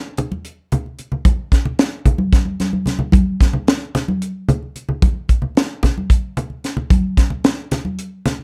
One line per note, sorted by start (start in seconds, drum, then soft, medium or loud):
0.17 closed hi-hat soft
0.17 low conga medium
0.32 high conga medium
0.44 closed hi-hat medium
0.72 closed hi-hat medium
0.72 low conga medium
0.86 low conga soft
0.98 closed hi-hat medium
0.98 low conga soft
1.12 low conga medium
1.25 kick loud
1.25 closed hi-hat medium
1.25 high conga medium
1.52 kick medium
1.52 snare soft
1.52 closed hi-hat medium
1.65 low conga medium
1.79 snare loud
1.79 closed hi-hat medium
2.05 kick medium
2.05 closed hi-hat medium
2.05 low conga medium
2.18 high conga medium
2.33 kick loud
2.33 snare soft
2.33 closed hi-hat medium
2.45 high conga soft
2.60 snare soft
2.60 closed hi-hat medium
2.60 high conga medium
2.73 high conga medium
2.86 snare soft
2.86 closed hi-hat medium
2.86 low conga medium
2.99 low conga medium
3.12 kick loud
3.12 closed hi-hat medium
3.12 high conga loud
3.41 kick medium
3.41 snare soft
3.41 closed hi-hat medium
3.41 low conga soft
3.53 low conga medium
3.67 snare loud
3.67 closed hi-hat medium
3.67 low conga soft
3.95 snare soft
3.95 closed hi-hat medium
3.95 low conga medium
4.08 high conga medium
4.22 closed hi-hat medium
4.49 closed hi-hat medium
4.49 low conga medium
4.63 low conga soft
4.75 closed hi-hat medium
4.75 low conga soft
4.89 low conga medium
5.02 kick loud
5.02 closed hi-hat medium
5.02 high conga medium
5.29 kick medium
5.29 closed hi-hat medium
5.29 low conga soft
5.42 low conga medium
5.55 snare loud
5.55 closed hi-hat medium
5.55 low conga soft
5.83 kick medium
5.83 snare soft
5.83 closed hi-hat medium
5.83 low conga medium
5.97 high conga medium
6.10 kick medium
6.10 closed hi-hat medium
6.37 closed hi-hat medium
6.37 low conga medium
6.50 low conga soft
6.64 snare soft
6.64 closed hi-hat medium
6.64 low conga soft
6.77 low conga medium
6.90 kick loud
6.90 closed hi-hat medium
6.90 high conga medium
7.17 kick medium
7.17 snare soft
7.17 closed hi-hat medium
7.17 low conga soft
7.30 low conga medium
7.44 snare loud
7.44 closed hi-hat medium
7.44 low conga soft
7.71 snare soft
7.71 closed hi-hat medium
7.71 low conga medium
7.85 high conga medium
7.98 closed hi-hat medium
8.26 snare soft
8.26 closed hi-hat medium
8.26 low conga medium
8.39 low conga soft